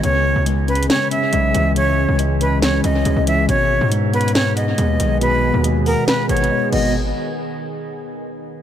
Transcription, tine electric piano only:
\new Staff \with { instrumentName = "Tine electric piano" } { \clef bass \time 4/4 \key gis \minor \tempo 4 = 139 cis4 gis8 cis'8 cis''8 cis'8 gis8 e8 | cis4 gis8 cis'8 cis''8 cis'8 gis8 e8 | b,4 gis8 b8 b'8 b8 gis8 dis8 | b,4 gis8 b8 b'8 b8 gis8 <b, dis gis b>8 |
r1 | }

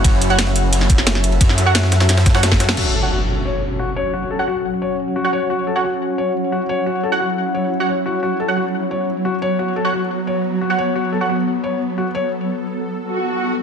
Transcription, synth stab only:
\new Staff \with { instrumentName = "Synth stab" } { \time 4/4 \key fis \minor \tempo 4 = 176 <fis' cis'' fis''>8. <fis' cis'' fis''>16 r2. | r8. <fis' cis'' fis''>16 r4. r16 <fis' cis'' fis''>16 r4 | r8. <fis' cis'' fis''>16 r2. | r8. <fis' cis'' fis''>16 r2 r16 <fis' cis'' fis''>8.~ |
<fis' cis'' fis''>8. <fis' cis'' fis''>16 r2. | r8. <fis' cis'' fis''>16 r4. r16 <fis' cis'' fis''>16 r4 | r8. <fis' cis'' fis''>16 r2. | r8. <fis' cis'' fis''>16 r2 r16 <fis' cis'' fis''>8.~ |
<fis' cis'' fis''>8. <fis' cis'' fis''>16 r2. | r1 | }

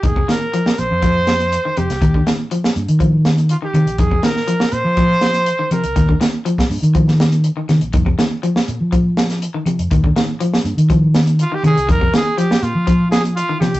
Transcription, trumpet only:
\new Staff \with { instrumentName = "Trumpet" } { \time 4/4 \key f \minor \tempo 4 = 122 aes'8 bes'4 c''2 g'8~ | g'8 r2 r8 f'16 g'8. | aes'8 bes'4 c''2 bes'8~ | bes'8 r2. r8 |
r1 | r2. f'16 g'16 aes'8 | bes'8 aes'8 g'8 f'4 aes'8 f'8 g'8 | }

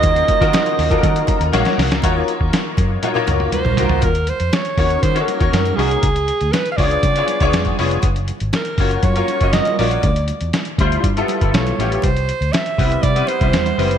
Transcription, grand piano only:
\new Staff \with { instrumentName = "Grand piano" } { \time 4/4 \key ees \dorian \tempo 4 = 120 << { r2 r8 bes''8 ges''4 | r1 | r1 | r1 |
r1 | r1 | r1 | } \\ { <bes ees' f' ges' c''>8 r16 <bes ees' f' ges' bes'>8. r16 <bes ees' f' ges' a' bes'>4 r16 <bes ees' ges' des'' f''>8. r16 | <bes ees' f' ges' des''>4. r8 <bes ees' f' ges' des''>16 <bes ees' f' ges' des''>4 r16 <bes ees' f' ges' bes'>16 r16 | r4. <bes des' ees' ges' des''>8 r16 <bes des' ees' ges' des''>16 r16 <bes des' ees' ges' des''>8 r16 <bes des' ees' ges' aes'>8 | r4. <ces' d' f' aes' des''>8 r16 <ces' d' f' aes' des''>16 r16 <ces' d' f' aes' des''>8 r16 <ces' d' f' aes' des''>8 |
r4. <bes des' f' ges' des''>8 r16 <bes des' f' ges' des''>16 r16 <bes des' f' ges' ees''>8 r16 <bes des' f' ges' des''>8 | r4. <g d' e' f' c''>8 r16 <g b e' f' a'>16 r16 <g b e' f' a'>8 r16 <g b e' f' g'>8 | r4. <g b c' e' b'>8 r16 <g b c' e' b'>16 r16 <g b c' e' b'>8 r16 <g b c' e' b'>8 | } >> }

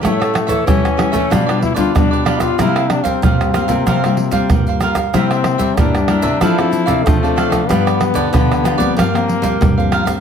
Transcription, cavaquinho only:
\new Staff \with { instrumentName = "Cavaquinho" } { \time 4/4 \key c \mixolydian \tempo 4 = 94 <g' a' cis'' e''>16 <a' cis'' e''>16 r16 <a' cis'' e''>16 <g' a' cis'' e''>8 <g' a' cis'' e''>16 <a' cis'' e''>16 <f' g' b' d''>16 <g' b' d''>16 r16 <g' b' d''>8 <g' b' d''>16 <f' g' b' d''>16 <g' b' d''>16 | <f' bes' c'' f''>16 <bes' c'' f''>16 r16 <bes' c'' f''>16 <f' bes' c'' f''>8 <f' bes' c'' f''>16 <bes' c'' f''>16 <f' bes' c'' f''>16 <bes' c'' f''>16 r16 <bes' c'' f''>8 <bes' c'' f''>16 <f' bes' c'' f''>16 <bes' c'' f''>16 | <e' bes' c'' e''>16 <bes' c'' e''>16 r16 <bes' c'' e''>16 <e' bes' c'' e''>8 <e' bes' c'' e''>16 <bes' c'' e''>16 <d' a' d'' f''>16 <a' d'' f''>16 r16 <a' d'' f''>8 <a' d'' f''>16 <d' a' d'' f''>16 <a' d'' f''>16 | <f' g' b' d''>16 <g' b' d''>16 r16 <g' b' d''>16 <f' g' b' d''>8 <f' g' b' d''>16 <g' b' d''>16 <f' bes' c'' f''>16 <bes' c'' f''>16 r16 <bes' c'' f''>8 <bes' c'' f''>16 <f' bes' c'' f''>16 <bes' c'' f''>16 | }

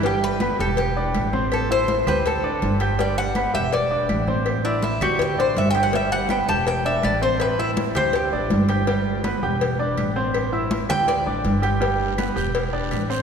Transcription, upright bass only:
\new Staff \with { instrumentName = "Upright bass" } { \clef bass \time 4/4 \key g \major \tempo 4 = 163 g,,4. e,,4. a,,4~ | a,,4. d,4. g,,4~ | g,,4. e,,4. a,,4~ | a,,4. d,4 a,,8 g,,4~ |
g,,4. e,,4. a,,4~ | a,,4. d,4 a,,8 g,,4~ | g,,4. e,,4. a,,4~ | a,,4. d,4 a,,8 g,,4~ |
g,,4. e,,4. a,,4 | }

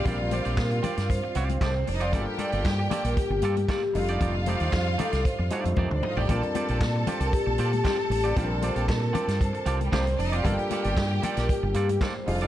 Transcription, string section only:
\new Staff \with { instrumentName = "String section" } { \time 4/4 \key f \mixolydian \tempo 4 = 115 <f' f''>2. \tuplet 3/2 { <a a'>16 <bes bes'>16 <c' c''>16 <d' d''>16 <ees' ees''>16 <f' f''>16 } | <g' g''>2. r8 <f' f''>8~ | <f' f''>2. \tuplet 3/2 { <bes bes'>16 <c' c''>16 <d' d''>16 <ees' ees''>16 <f' f''>16 <g' g''>16 } | <a' a''>1~ |
<a' a''>2~ \tuplet 3/2 { <a' a''>4 r16 <g g'>16 <a a'>16 <bes bes'>16 <c' c''>16 <d' d''>16 <ees' ees''>16 <f' f''>16 } | <g' g''>2. r8 <f' f''>8 | }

